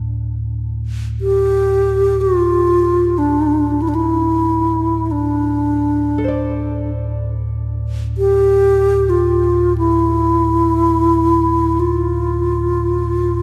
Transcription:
Already playing: synth drone D2 A2
0.16 synth drone D2 A2
1.21 bass flute G4
2.21 bass flute F4
3.18 bass flute D4
3.82 bass flute E4
3.89 bass flute D4
3.95 bass flute E4
5.06 bass flute E4
5.11 bass flute D4
6.18 nylon-string guitar A4
6.24 nylon-string guitar C5
6.28 nylon-string guitar D5
8.18 bass flute G4
9.09 bass flute F4
9.78 bass flute E4
11.80 bass flute F4

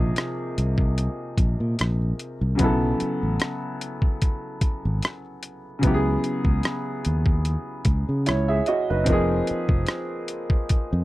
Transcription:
Already playing: fingered electric bass A#1, grand piano C3 F3 A#3 D#4 G#4
0.16 cross-stick, closed hi-hat
0.58 fingered electric bass C2, closed hi-hat
0.78 kick
0.98 closed hi-hat
1.38 fingered electric bass A#1, kick, closed hi-hat
1.60 fingered electric bass A#2
1.79 fingered electric bass A#1, cross-stick, closed hi-hat
2.19 closed hi-hat
2.41 fingered electric bass C2
2.55 grand piano C#3 F#3, closed hi-hat
2.59 fingered electric bass B1, grand piano B3 E4, kick
2.64 grand piano A4
3.00 muted fingered electric bass stroke, closed hi-hat
3.23 fingered electric bass A1
3.40 cross-stick, closed hi-hat
3.81 closed hi-hat
4.02 kick
4.22 kick, closed hi-hat
4.61 muted fingered electric bass stroke, kick, closed hi-hat
4.85 fingered electric bass G#1
5.03 cross-stick, closed hi-hat
5.43 closed hi-hat
5.79 grand piano C#3 F#3
5.83 fingered electric bass C#2, grand piano B3 E4, kick, closed hi-hat
5.87 grand piano G4
5.94 grand piano G#4
6.24 closed hi-hat
6.45 fingered electric bass C#2, kick
6.63 cross-stick, closed hi-hat
7.05 fingered electric bass D#2, closed hi-hat
7.26 kick
7.45 closed hi-hat
7.85 fingered electric bass C#2, kick, closed hi-hat
8.09 fingered electric bass C#3
8.26 fingered electric bass C#2, grand piano E4 C#5, cross-stick, closed hi-hat
8.48 grand piano G#4 E5
8.66 grand piano F#4 D#5, closed hi-hat
8.90 fingered electric bass F#1, grand piano D#4 B4
9.04 fingered electric bass F1, grand piano F3 C4, kick, closed hi-hat
9.08 grand piano A#3 D#4 G#4
9.47 muted fingered electric bass stroke, closed hi-hat
9.69 fingered electric bass F1, kick
9.87 cross-stick, closed hi-hat
10.28 closed hi-hat
10.50 kick
10.69 kick, closed hi-hat
10.93 fingered electric bass F2

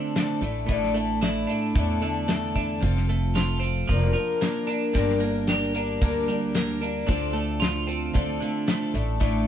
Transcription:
Already playing: clean electric guitar D3 A3 C4 F4, twelve-string acoustic guitar C4 D4 A4
0.16 twelve-string acoustic guitar F3 C4 D4 A4, clean electric guitar A3, snare, closed hi-hat
0.41 upright bass A1, clean electric guitar A2, twelve-string acoustic guitar A3 D4 E4 A4, closed hi-hat
0.68 twelve-string acoustic guitar A2 D3 A3 D4 E4 A4, kick, closed hi-hat
0.83 snare
0.94 twelve-string acoustic guitar A3 D4 E4 A4, closed hi-hat
1.21 twelve-string acoustic guitar A3 D4 E4 A4, snare, closed hi-hat
1.48 twelve-string acoustic guitar A3 D4 E4 A4, closed hi-hat
1.75 upright bass E2, twelve-string acoustic guitar A2 D3 A3 D4 E4 A4, kick, closed hi-hat
2.01 clean electric guitar D3, twelve-string acoustic guitar A3 D4 E4 A4, closed hi-hat
2.28 twelve-string acoustic guitar A3 D4 E4 A4, snare, closed hi-hat
2.55 twelve-string acoustic guitar A3 D4 E4 A4, kick, closed hi-hat
2.81 upright bass F1, clean electric guitar F2, twelve-string acoustic guitar F3 C4 F4 A4, kick, closed hi-hat
2.96 snare
3.07 clean electric guitar A3, twelve-string acoustic guitar C4 F4 A4, closed hi-hat
3.33 twelve-string acoustic guitar F3 C4 F4 A4, snare, closed hi-hat
3.60 clean electric guitar C4, twelve-string acoustic guitar F4 A4, closed hi-hat
3.65 twelve-string acoustic guitar C4
3.89 upright bass F1, twelve-string acoustic guitar F3 A#3 D4 A#4, kick, closed hi-hat
4.13 clean electric guitar F3, twelve-string acoustic guitar D4 A#4, closed hi-hat
4.18 twelve-string acoustic guitar A#3
4.40 twelve-string acoustic guitar F3 A#3 D4 A#4, snare, closed hi-hat
4.67 twelve-string acoustic guitar A#3 D4 A#4, closed hi-hat
4.95 upright bass G1, twelve-string acoustic guitar G2 D3 G3 A#3 D4 A#4, kick, closed hi-hat
5.09 snare
5.20 twelve-string acoustic guitar G3 A#3 D4 A#4, closed hi-hat
5.47 twelve-string acoustic guitar G3 A#3 D4, clean electric guitar G4, snare, closed hi-hat
5.51 twelve-string acoustic guitar A#4
5.74 twelve-string acoustic guitar G3 A#3 D4 A#4, closed hi-hat
6.01 upright bass D2, twelve-string acoustic guitar G2 D3 G3 A#3 D4 A#4, kick, closed hi-hat
6.27 twelve-string acoustic guitar G3 A#3 D4 A#4, closed hi-hat
6.55 twelve-string acoustic guitar G3 A#3 D4 A#4, snare, closed hi-hat
6.81 twelve-string acoustic guitar G3 A#3 D4 A#4, closed hi-hat
7.07 upright bass D2, twelve-string acoustic guitar D3 F3 C4 F4 A4, kick, closed hi-hat
7.33 clean electric guitar A3, twelve-string acoustic guitar F4 A4, closed hi-hat
7.37 twelve-string acoustic guitar C4
7.60 twelve-string acoustic guitar F3 C4 F4 A4, snare, closed hi-hat
7.87 twelve-string acoustic guitar C4 F4 A4, closed hi-hat
8.13 upright bass D2, twelve-string acoustic guitar D3 F3 C4 F4 A4, clean electric guitar A3, kick, closed hi-hat
8.40 clean electric guitar D3, twelve-string acoustic guitar F4 A4, closed hi-hat
8.44 twelve-string acoustic guitar C4
8.67 twelve-string acoustic guitar F3 C4 F4 A4, clean electric guitar A3, snare, closed hi-hat
8.94 upright bass A1, clean electric guitar A2, twelve-string acoustic guitar A3 D4 E4 A4, closed hi-hat
9.20 twelve-string acoustic guitar A2 D3 A3 D4 E4 A4, kick, closed hi-hat

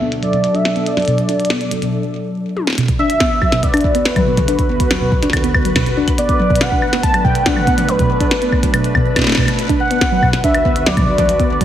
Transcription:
Already playing: ambient pad B2 F#3 D4 A4
0.01 synth pluck B3
0.12 closed hi-hat
0.23 synth pluck F#3, soft synth lead D5, closed hi-hat
0.33 synth pluck B2, closed hi-hat
0.44 closed hi-hat
0.54 synth pluck D4, soft synth lead E5, closed hi-hat
0.65 snare, closed hi-hat
0.76 synth pluck B3, closed hi-hat
0.86 soft synth lead D5, closed hi-hat
0.97 synth pluck F#3, snare, closed hi-hat
1.00 closed hi-hat
1.02 closed hi-hat
1.05 synth pluck B2, closed hi-hat
1.08 closed hi-hat
1.18 closed hi-hat
1.29 synth pluck D4, closed hi-hat
1.40 closed hi-hat
1.45 closed hi-hat
1.50 synth pluck B3, snare
1.61 closed hi-hat
1.71 synth pluck F#3, closed hi-hat
1.82 synth pluck B2, closed hi-hat
2.57 high tom
2.67 snare
2.70 snare
2.73 snare
2.75 ambient pad D2 D3 F#4 B4, synth texture B4, snare
2.78 synth pluck B2, snare, closed hi-hat
2.81 snare
2.83 snare
2.86 kick, snare, closed hi-hat
2.99 synth pluck D4, soft synth lead E5
3.10 closed hi-hat
3.20 synth pluck B3, kick, snare, closed hi-hat
3.42 synth pluck F#3, kick, claves
3.52 synth pluck B2, snare, closed hi-hat
3.63 soft synth lead D5, kick, closed hi-hat
3.74 synth pluck D4, closed hi-hat, claves
3.77 closed hi-hat
3.81 kick, closed hi-hat
3.95 synth pluck B3, closed hi-hat
4.05 soft synth lead B4, snare, closed hi-hat
4.16 synth pluck F#3, kick, closed hi-hat, mid tom, claves
4.27 synth pluck B2
4.37 kick, closed hi-hat, mid tom
4.48 synth pluck D4, soft synth lead B4, closed hi-hat
4.59 kick, closed hi-hat
4.70 synth pluck B3
4.80 kick, closed hi-hat
4.91 synth pluck F#3, snare, closed hi-hat
5.01 synth pluck B2
5.12 kick
5.23 synth pluck D4, snare, closed hi-hat
5.30 kick, snare, closed hi-hat, claves
5.37 snare
5.44 synth pluck B3, closed hi-hat
5.54 kick, claves
5.65 synth pluck F#3, closed hi-hat
5.76 synth pluck B2, kick, snare, closed hi-hat, claves
5.86 closed hi-hat
5.97 synth pluck D4
6.08 kick, closed hi-hat, claves
6.18 ambient pad B2 A3 D4, synth pluck B3, soft synth lead D5, closed hi-hat
6.29 kick, closed hi-hat
6.40 synth pluck F#3
6.50 synth pluck B2, kick
6.56 closed hi-hat
6.61 soft synth lead F#5, snare, closed hi-hat
6.72 synth pluck D4, kick
6.82 claves
6.93 synth pluck B3, snare, closed hi-hat
7.03 soft synth lead A5, kick, closed hi-hat
7.14 synth pluck F#3, closed hi-hat, claves
7.25 synth pluck B2, soft synth lead G5, kick
7.35 closed hi-hat
7.46 synth pluck D4, soft synth lead F#5, kick, snare, closed hi-hat
7.57 mid tom, claves
7.67 synth pluck B3, kick, closed hi-hat
7.78 closed hi-hat, mid tom
7.89 synth pluck F#3, soft synth lead B4, closed hi-hat
7.99 synth pluck B2, kick, closed hi-hat
8.20 synth pluck D4, kick, closed hi-hat
8.31 snare, closed hi-hat
8.42 synth pluck B3, closed hi-hat
8.52 kick, claves
8.63 synth pluck F#3, kick, closed hi-hat
8.74 synth pluck B2, closed hi-hat, claves
8.84 closed hi-hat
8.95 synth pluck B2, kick, claves
9.16 synth pluck B2, kick, snare, closed hi-hat, claves
9.19 snare
9.22 snare
9.24 snare
9.27 synth pluck A3, snare, claves
9.29 snare, claves
9.32 snare, claves
9.35 kick, snare, claves
9.37 synth pluck B2, snare, claves
9.40 claves
9.43 claves
9.45 closed hi-hat, claves
9.48 synth pluck B2, claves
9.59 ambient pad D2 D3 F#4, closed hi-hat
9.69 synth pluck D4, kick, closed hi-hat
9.80 soft synth lead F#5
9.91 synth pluck B3, closed hi-hat
10.01 kick, snare, closed hi-hat
10.12 synth pluck F#3
10.23 synth pluck B2, kick, claves
10.33 snare, closed hi-hat
10.44 synth pluck D4, soft synth lead E5, kick, closed hi-hat
10.55 closed hi-hat, claves
10.65 synth pluck B3, kick
10.76 closed hi-hat
10.86 synth pluck F#3, soft synth lead D5, snare, closed hi-hat
10.97 synth pluck B2, kick, closed hi-hat, mid tom, claves
11.18 synth pluck D4, kick, closed hi-hat, mid tom
11.22 mid tom
11.25 closed hi-hat, mid tom
11.29 soft synth lead D5, mid tom
11.33 mid tom
11.36 synth pluck B3, kick, closed hi-hat, mid tom
11.61 synth pluck F#3, kick, closed hi-hat

